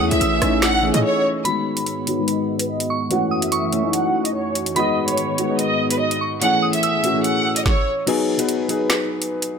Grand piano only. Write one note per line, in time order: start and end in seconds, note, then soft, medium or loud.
0.00 0.11 E3 loud
0.00 0.11 A3 loud
0.00 0.12 C#4 loud
0.00 0.84 G#4 loud
0.11 0.30 E3 medium
0.11 0.30 A3 medium
0.11 0.30 C#4 medium
0.11 0.31 E4 loud
0.41 0.67 E3 medium
0.41 0.67 A3 medium
0.41 0.67 C#4 medium
0.41 0.67 D#4 loud
0.82 1.21 E3 medium
0.82 1.21 A3 medium
0.82 1.21 C#4 medium
0.82 1.21 G#4 loud
0.82 0.93 E5 medium
0.94 1.03 D#5 medium
1.04 1.42 C#5 medium
1.44 1.83 D#3 medium
1.44 1.83 G#3 medium
1.44 1.83 B3 medium
1.44 1.83 F#4 loud
2.06 2.14 D#3 medium
2.06 2.14 G#3 medium
2.06 2.14 B3 medium
2.06 2.14 F#4 medium
2.17 2.68 D#3 medium
2.17 2.68 G#3 medium
2.17 2.68 B3 medium
2.17 2.68 F#4 medium
3.10 3.48 E3 loud
3.10 3.48 A3 medium
3.10 3.49 C#4 medium
3.10 3.49 F#4 loud
3.72 3.79 E3 medium
3.72 3.79 A3 medium
3.72 3.79 C#4 medium
3.72 3.80 E4 medium
3.83 4.33 E3 medium
3.83 4.33 A3 medium
3.83 4.34 C#4 medium
3.83 4.34 D#4 medium
4.75 5.14 D#3 medium
4.75 5.14 G#3 medium
4.75 5.14 B3 medium
4.75 5.15 F#4 loud
5.38 5.45 D#3 medium
5.38 5.45 G#3 medium
5.38 5.45 B3 medium
5.38 5.45 F#4 medium
5.48 5.99 D#3 medium
5.48 5.99 G#3 medium
5.48 5.99 B3 medium
5.48 6.00 D#4 medium
6.41 6.79 E3 medium
6.41 6.80 A3 medium
6.41 6.80 C#4 medium
6.41 6.80 G#4 loud
7.03 7.10 E3 medium
7.03 7.10 A3 medium
7.03 7.11 C#4 medium
7.03 7.11 F#4 medium
7.14 7.64 E3 medium
7.14 7.64 A3 medium
7.14 7.65 C#4 medium
7.14 7.65 G#4 medium
8.06 8.26 F#3 loud
8.06 8.26 B3 loud
8.06 8.26 D#4 loud
8.06 8.27 G#4 loud
8.38 8.57 F#3 medium
8.38 8.57 B3 medium
8.38 8.58 D#4 medium
8.38 8.58 B4 loud
8.68 9.20 F#3 medium
8.68 9.20 B3 medium
8.68 9.20 D#4 medium
8.68 9.21 G#4 loud